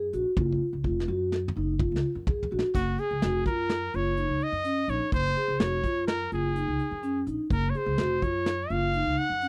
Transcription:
0.13 0.24 A#1 medium
0.13 0.27 F#4 medium
0.13 closed hi-hat medium
0.37 0.58 F#1 medium
0.37 0.64 F4 medium
0.37 kick loud
0.37 high tom soft
0.53 kick soft
0.73 0.83 C#2 medium
0.84 1.05 F1 medium
0.84 0.97 F4 medium
0.84 kick medium
1.00 snare medium
1.08 1.50 F#2 medium
1.08 1.35 F#4 medium
1.32 snare medium
1.48 mid tom medium
1.56 1.87 F#1 medium
1.56 1.69 D#4 medium
1.79 2.06 F4 medium
1.79 kick medium
1.79 mid tom medium
1.92 2.02 C#2 medium
1.92 snare medium
2.15 2.46 F#2 medium
2.27 2.41 G#4 medium
2.27 kick medium
2.27 floor tom medium
2.43 floor tom medium
2.51 2.62 A#1 medium
2.51 2.64 F#4 medium
2.59 snare medium
2.75 2.95 F#1 medium
2.75 3.01 F#4 medium
2.75 kick medium
2.75 crash medium
2.98 3.12 G#4 medium
2.98 3.46 G#4 medium
2.98 closed hi-hat soft
3.11 3.21 C#2 medium
3.22 3.43 F1 medium
3.22 3.35 F#4 medium
3.22 snare loud
3.22 closed hi-hat medium
3.45 3.87 F#2 medium
3.45 3.73 F4 medium
3.45 3.97 A#4 medium
3.45 kick medium
3.45 snare soft
3.45 closed hi-hat soft
3.70 snare loud
3.70 closed hi-hat medium
3.94 4.25 F#1 medium
3.94 4.07 F4 medium
3.94 4.45 C#5 medium
3.94 closed hi-hat soft
4.17 4.43 D#4 medium
4.17 closed hi-hat medium
4.29 4.39 C#2 medium
4.41 4.91 D#5 medium
4.41 closed hi-hat soft
4.52 4.84 F#2 medium
4.64 4.78 C#4 medium
4.64 closed hi-hat medium
4.88 4.99 A#1 medium
4.88 5.02 D#4 medium
4.88 5.13 C#5 medium
4.88 closed hi-hat soft
5.12 5.33 F#1 medium
5.12 5.61 C5 medium
5.12 kick medium
5.12 closed hi-hat medium
5.37 5.50 G#4 medium
5.37 closed hi-hat soft
5.48 5.58 C#2 medium
5.59 5.81 F1 medium
5.59 5.73 F#4 medium
5.59 6.07 C#5 medium
5.59 snare loud
5.59 closed hi-hat medium
5.84 6.25 F#2 medium
5.84 6.10 F4 medium
5.84 kick medium
5.84 closed hi-hat medium
6.07 6.30 A#4 medium
6.07 snare loud
6.07 closed hi-hat medium
6.32 6.63 F#1 medium
6.32 6.45 F4 medium
6.32 7.24 G#4 medium
6.32 closed hi-hat soft
6.55 6.82 D#4 medium
6.55 closed hi-hat medium
6.68 6.78 C#2 medium
6.79 closed hi-hat soft
6.91 7.22 F#2 medium
7.03 7.16 C#4 medium
7.03 closed hi-hat medium
7.27 7.37 A#1 medium
7.27 7.40 D#4 medium
7.27 closed hi-hat soft
7.50 7.71 F#1 medium
7.50 7.71 A#4 medium
7.50 kick medium
7.50 closed hi-hat medium
7.70 7.78 C#5 medium
7.74 7.88 G#4 medium
7.74 8.24 C5 medium
7.74 closed hi-hat medium
7.86 7.97 C#2 medium
7.98 8.19 F1 medium
7.98 8.12 F#4 medium
7.98 snare medium
7.98 closed hi-hat medium
8.22 8.64 F#2 medium
8.22 8.72 C#5 medium
8.22 kick medium
8.22 closed hi-hat soft
8.46 snare medium
8.46 closed hi-hat medium
8.70 9.01 F#1 medium
8.70 8.83 F4 medium
8.70 9.20 F5 medium
8.70 closed hi-hat soft
8.94 9.21 D#4 medium
8.94 closed hi-hat medium
9.05 9.16 C#2 medium
9.17 9.48 F#5 loud
9.17 closed hi-hat soft
9.30 9.48 F#2 medium
9.41 9.48 C#4 medium
9.41 closed hi-hat medium

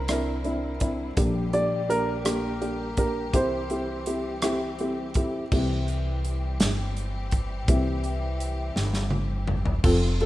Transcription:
0.00 1.13 C2 medium
0.00 3.30 D3 medium
0.00 5.48 G3 medium
0.00 1.15 C4 medium
0.00 1.15 E4 medium
0.00 0.10 A#4 medium
0.08 0.35 C4 medium
0.08 0.35 D4 medium
0.08 0.35 E4 medium
0.08 0.87 A#4 medium
0.08 cross-stick loud
0.08 closed hi-hat medium
0.44 0.71 C4 medium
0.44 0.71 D4 medium
0.44 0.71 E4 medium
0.44 closed hi-hat soft
0.80 1.07 C4 medium
0.80 1.07 D4 medium
0.80 1.07 E4 medium
0.80 kick medium
0.80 closed hi-hat medium
1.16 3.34 A#1 medium
1.16 3.31 A#3 medium
1.16 1.43 A#3 medium
1.16 1.43 D4 medium
1.16 5.48 G4 medium
1.16 1.43 G4 medium
1.16 kick loud
1.16 closed hi-hat medium
1.53 1.79 A#3 medium
1.53 1.79 D4 medium
1.53 1.79 G4 medium
1.53 1.90 D5 medium
1.53 closed hi-hat soft
1.89 2.15 A#3 medium
1.89 2.15 D4 medium
1.89 2.15 G4 medium
1.89 2.97 A#4 medium
1.89 closed hi-hat medium
2.25 2.51 A#3 medium
2.25 2.51 D4 medium
2.25 2.51 G4 loud
2.25 cross-stick loud
2.25 closed hi-hat medium
2.61 2.87 A#3 medium
2.61 2.87 D4 medium
2.61 2.87 G4 medium
2.61 closed hi-hat soft
2.97 3.23 A#3 medium
2.97 3.23 D4 medium
2.97 3.24 G4 medium
2.97 3.32 A#4 medium
2.97 kick medium
2.97 closed hi-hat medium
3.33 5.48 C2 loud
3.33 5.50 E3 medium
3.33 5.50 C4 medium
3.33 3.59 C4 medium
3.33 3.59 E4 medium
3.33 3.60 G4 loud
3.33 4.76 C5 medium
3.33 kick medium
3.33 closed hi-hat medium
3.70 3.96 C4 medium
3.70 3.96 E4 medium
3.70 3.96 G4 medium
3.70 closed hi-hat medium
4.06 4.33 C4 medium
4.06 4.33 E4 medium
4.06 4.33 G4 medium
4.06 closed hi-hat medium
4.42 4.69 C4 medium
4.42 4.69 E4 medium
4.42 4.69 G4 loud
4.42 cross-stick loud
4.42 closed hi-hat medium
4.79 5.06 C4 medium
4.79 5.06 E4 medium
4.79 5.06 G4 medium
4.79 closed hi-hat soft
5.14 5.42 C4 medium
5.14 5.42 E4 medium
5.14 5.42 G4 medium
5.14 kick medium
5.14 closed hi-hat medium
5.52 6.57 C2 medium
5.52 9.80 E3 medium
5.52 6.57 E3 soft
5.52 9.80 G3 medium
5.52 6.57 G3 medium
5.52 9.80 C4 medium
5.52 6.57 C4 medium
5.52 9.80 G4 medium
5.52 kick medium
5.52 crash medium
5.88 closed hi-hat soft
6.25 closed hi-hat medium
6.60 7.68 G1 medium
6.60 snare loud
6.60 closed hi-hat medium
6.97 closed hi-hat soft
7.31 kick medium
7.31 closed hi-hat medium
7.68 8.72 C2 medium
7.68 8.72 E3 medium
7.68 8.72 G3 soft
7.68 8.73 C4 medium
7.68 kick loud
7.68 closed hi-hat medium
8.04 closed hi-hat soft
8.40 closed hi-hat medium
8.76 9.80 G1 medium
8.76 snare medium
8.94 snare medium
9.10 high tom medium
9.47 mid tom medium
9.65 floor tom medium
9.84 10.26 F1 loud
9.84 10.26 C3 medium
9.84 10.26 F3 medium
9.84 10.26 A3 medium
9.84 10.10 C4 medium
9.84 10.10 F4 medium
9.84 10.26 F4 medium
9.84 10.10 A4 loud
9.84 kick loud
9.84 crash loud
10.20 10.26 C4 medium
10.20 10.26 F4 medium
10.20 10.26 A4 medium
10.20 ride soft

